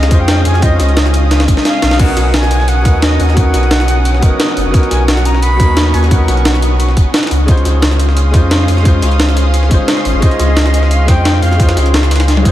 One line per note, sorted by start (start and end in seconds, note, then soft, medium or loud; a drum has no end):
0.00 0.12 C#2 loud
0.00 0.08 G#3 loud
0.00 0.09 C#4 medium
0.00 7.44 C#4 medium
0.00 0.11 D#4 medium
0.00 0.12 F4 medium
0.00 0.14 C5 loud
0.00 0.22 D#5 loud
0.00 1.96 F5 medium
0.00 7.44 D#6 medium
0.00 snare loud
0.00 closed hi-hat medium
0.08 0.44 F2 medium
0.08 0.58 G#3 loud
0.08 0.59 C#4 medium
0.08 0.60 D#4 medium
0.08 kick loud
0.08 snare medium
0.08 closed hi-hat medium
0.12 0.61 F4 medium
0.12 0.62 C5 loud
0.21 0.45 G5 loud
0.28 snare loud
0.28 closed hi-hat medium
0.45 0.78 F2 medium
0.45 0.64 G#5 loud
0.45 closed hi-hat medium
0.54 snare soft
0.59 1.45 G#3 loud
0.59 1.45 C#4 medium
0.59 1.46 D#4 medium
0.59 0.79 D#5 loud
0.59 kick loud
0.59 closed hi-hat medium
0.64 1.47 F4 medium
0.64 1.48 C5 loud
0.80 1.47 C#2 loud
0.80 1.12 D#5 medium
0.80 snare soft
0.80 closed hi-hat medium
0.89 closed hi-hat soft
0.97 snare loud
0.97 closed hi-hat medium
1.06 snare soft
1.14 closed hi-hat medium
1.31 snare loud
1.31 snare medium
1.31 closed hi-hat medium
1.40 snare loud
1.40 snare medium
1.40 closed hi-hat medium
1.48 1.56 G#1 medium
1.48 kick loud
1.48 closed hi-hat medium
1.57 snare medium
1.65 2.01 F5 loud
1.65 snare medium
1.65 closed hi-hat medium
1.82 2.16 B1 medium
1.82 snare loud
1.82 closed hi-hat medium
1.82 closed hi-hat loud
1.91 snare medium
1.97 2.81 F#3 loud
1.97 2.82 B3 medium
1.97 2.83 C#4 medium
1.97 7.44 F#5 medium
1.97 2.35 F#5 loud
1.97 kick loud
1.97 closed hi-hat medium
1.97 crash medium
2.01 2.84 D#4 medium
2.01 2.85 A#4 loud
2.08 closed hi-hat soft
2.17 2.87 B1 loud
2.17 snare soft
2.17 closed hi-hat medium
2.34 2.70 G#5 loud
2.34 snare loud
2.34 closed hi-hat medium
2.43 snare soft
2.43 snare medium
2.51 closed hi-hat medium
2.60 snare medium
2.68 3.04 F#5 loud
2.68 closed hi-hat medium
2.82 3.18 D#2 medium
2.82 3.32 F#3 loud
2.82 3.34 B3 medium
2.82 3.35 C#4 medium
2.82 kick loud
2.82 snare medium
2.82 closed hi-hat medium
2.87 3.35 D#4 medium
2.87 3.36 A#4 loud
3.02 3.37 D#5 loud
3.02 snare loud
3.02 closed hi-hat medium
3.20 3.53 D#2 medium
3.20 closed hi-hat medium
3.20 open hi-hat medium
3.29 snare soft
3.34 4.18 F#3 loud
3.34 4.20 B3 medium
3.34 4.20 C#4 medium
3.34 4.36 F#5 loud
3.34 kick loud
3.34 closed hi-hat medium
3.38 4.21 D#4 medium
3.38 4.22 A#4 loud
3.54 4.21 B1 loud
3.54 snare soft
3.54 closed hi-hat loud
3.54 closed hi-hat medium
3.63 closed hi-hat soft
3.71 snare loud
3.71 closed hi-hat medium
3.80 snare soft
3.80 snare medium
3.88 closed hi-hat medium
4.05 closed hi-hat medium
4.14 snare soft
4.20 4.31 F#1 medium
4.20 4.69 F#3 loud
4.20 4.71 B3 medium
4.20 4.72 C#4 medium
4.20 kick loud
4.20 closed hi-hat medium
4.24 4.73 D#4 medium
4.24 4.73 A#4 loud
4.40 snare loud
4.40 closed hi-hat medium
4.49 snare medium
4.57 4.65 F#1 medium
4.57 closed hi-hat medium
4.57 open hi-hat medium
4.66 4.73 F#1 medium
4.71 5.55 F#3 loud
4.71 5.57 B3 medium
4.71 5.58 C#4 medium
4.71 7.46 C#6 medium
4.71 kick loud
4.71 closed hi-hat medium
4.75 5.58 D#4 medium
4.75 5.59 A#4 loud
4.83 closed hi-hat soft
4.91 5.61 B1 loud
4.91 5.07 G#5 medium
4.91 snare soft
4.91 closed hi-hat medium
5.08 5.27 F#5 loud
5.08 snare loud
5.08 closed hi-hat medium
5.17 snare soft
5.17 snare medium
5.25 5.44 A#5 loud
5.25 closed hi-hat medium
5.35 snare medium
5.42 5.95 B5 loud
5.42 closed hi-hat medium
5.57 5.93 D#2 medium
5.57 6.07 F#3 loud
5.57 6.08 B3 medium
5.57 6.09 C#4 medium
5.57 kick loud
5.57 snare medium
5.57 closed hi-hat medium
5.61 6.11 A#3 loud
5.61 6.10 D#4 medium
5.77 snare loud
5.77 closed hi-hat medium
5.94 6.27 D#2 medium
5.94 6.10 G#5 loud
5.94 closed hi-hat medium
5.94 open hi-hat medium
6.03 snare soft
6.08 6.93 F#3 loud
6.08 6.94 B3 medium
6.08 6.95 C#4 medium
6.08 6.59 F#5 medium
6.08 kick loud
6.08 closed hi-hat medium
6.13 6.96 D#4 medium
6.13 6.96 A#4 loud
6.28 6.95 B1 loud
6.28 snare soft
6.28 closed hi-hat medium
6.37 closed hi-hat soft
6.45 snare loud
6.45 closed hi-hat medium
6.54 snare soft
6.62 closed hi-hat medium
6.80 closed hi-hat medium
6.88 snare medium
6.97 7.05 F#1 medium
6.97 kick loud
6.97 closed hi-hat medium
7.14 snare medium
7.14 snare loud
7.14 closed hi-hat medium
7.18 snare medium
7.18 closed hi-hat medium
7.23 snare medium
7.23 closed hi-hat medium
7.27 7.64 C#2 medium
7.27 snare medium
7.27 closed hi-hat medium
7.27 open hi-hat medium
7.31 closed hi-hat medium
7.46 8.30 G#3 loud
7.46 8.31 C#4 medium
7.46 12.52 C#4 medium
7.46 8.32 D#4 medium
7.46 12.52 F5 medium
7.46 12.52 C6 medium
7.46 12.52 D#6 medium
7.46 kick loud
7.46 closed hi-hat medium
7.50 8.33 F4 medium
7.50 8.34 C5 loud
7.57 closed hi-hat soft
7.65 8.35 C#2 loud
7.65 snare soft
7.65 closed hi-hat medium
7.82 snare loud
7.82 closed hi-hat medium
7.91 snare soft
8.00 closed hi-hat medium
8.09 snare medium
8.17 closed hi-hat medium
8.31 8.67 F2 medium
8.31 8.81 G#3 loud
8.31 8.82 C#4 medium
8.31 8.83 D#4 medium
8.31 kick loud
8.31 snare medium
8.31 closed hi-hat medium
8.35 8.84 F4 medium
8.35 8.85 C5 loud
8.51 snare loud
8.51 closed hi-hat medium
8.68 9.01 F2 medium
8.68 closed hi-hat medium
8.68 open hi-hat medium
8.77 snare soft
8.82 9.67 G#3 loud
8.82 9.68 C#4 medium
8.82 9.69 D#4 medium
8.82 kick loud
8.82 closed hi-hat medium
8.87 9.70 F4 medium
8.87 9.70 C5 loud
9.02 9.70 C#2 loud
9.02 snare soft
9.02 closed hi-hat medium
9.11 closed hi-hat soft
9.20 snare loud
9.20 closed hi-hat medium
9.29 snare soft
9.37 closed hi-hat medium
9.54 closed hi-hat medium
9.63 snare medium
9.68 9.79 G#1 medium
9.68 10.18 G#3 loud
9.68 10.20 C#4 medium
9.68 10.21 D#4 medium
9.68 kick loud
9.68 closed hi-hat medium
9.73 10.21 F4 medium
9.73 10.22 C5 loud
9.88 snare loud
9.88 closed hi-hat medium
9.97 snare medium
10.05 10.13 G#1 medium
10.05 closed hi-hat medium
10.05 open hi-hat medium
10.14 10.22 G#1 medium
10.20 11.04 G#3 loud
10.20 11.05 C#4 medium
10.20 11.06 D#4 medium
10.20 10.93 D#5 loud
10.20 kick loud
10.20 closed hi-hat medium
10.24 11.07 F4 medium
10.24 11.08 C5 loud
10.31 closed hi-hat soft
10.39 11.10 C#2 loud
10.39 snare soft
10.39 closed hi-hat medium
10.57 snare loud
10.57 closed hi-hat medium
10.66 snare soft
10.74 closed hi-hat medium
10.83 snare medium
10.91 11.10 F5 loud
10.91 closed hi-hat medium
11.05 11.41 F2 medium
11.05 11.55 G#3 loud
11.05 11.57 C#4 medium
11.05 11.58 D#4 medium
11.05 11.44 G5 loud
11.05 kick loud
11.05 snare loud
11.05 closed hi-hat medium
11.10 11.58 F4 medium
11.10 11.59 C5 loud
11.25 snare loud
11.25 closed hi-hat medium
11.42 11.75 F2 medium
11.42 11.77 F5 loud
11.42 open hi-hat medium
11.52 snare soft
11.57 12.41 G#3 loud
11.57 12.42 C#4 medium
11.57 12.43 D#4 medium
11.57 kick loud
11.57 closed hi-hat medium
11.61 12.44 F4 medium
11.61 12.45 C5 loud
11.69 snare loud
11.69 closed hi-hat medium
11.77 12.44 C#2 loud
11.77 snare soft
11.77 closed hi-hat loud
11.86 closed hi-hat medium
11.94 snare loud
11.94 closed hi-hat medium
12.03 snare soft
12.11 snare medium
12.11 closed hi-hat medium
12.16 snare medium
12.16 closed hi-hat medium
12.20 snare loud
12.20 closed hi-hat medium
12.28 snare medium
12.28 closed hi-hat medium
12.37 high tom medium
12.42 12.52 G#1 medium
12.42 12.52 G#3 loud
12.42 12.52 C#4 medium
12.42 12.52 D#4 medium
12.42 kick loud
12.42 closed hi-hat medium
12.47 12.52 F4 medium
12.47 12.52 C5 loud